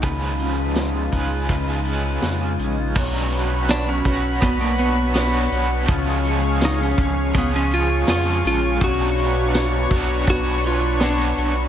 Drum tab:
CC |--------|x-------|--------|--------|
HH |xxxxxxxx|-xxxxxxx|xxxxxxxx|xxxxxxxx|
TB |--------|--x---x-|--x---x-|--x---x-|
SD |--o---o-|--o---o-|--o---o-|--o---o-|
BD |o--oo---|o--oo---|o--oo---|o--oo---|